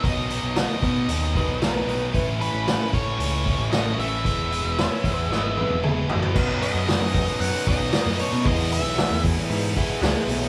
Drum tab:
CC |----------------|----------------|----------------|x---------------|
HH |o-o-o-o-o-o-o-o-|o-o-o-o-o-o-o-o-|o-o-o-o---------|--o-o-o-o-o-o-o-|
SD |----o-------o---|----o-------o---|----o---o-------|----o-------o---|
T1 |----------------|----------------|----------oo----|----------------|
T2 |----------------|----------------|------------o---|----------------|
FT |----------------|----------------|--------------oo|----------------|
BD |o-----o---o-----|o-----o---o-----|o-----o---------|o-----o---o-----|

CC |----------------|
HH |o-o-o-o-o-o-o-o-|
SD |----o-------o---|
T1 |----------------|
T2 |----------------|
FT |----------------|
BD |o-----o---o-----|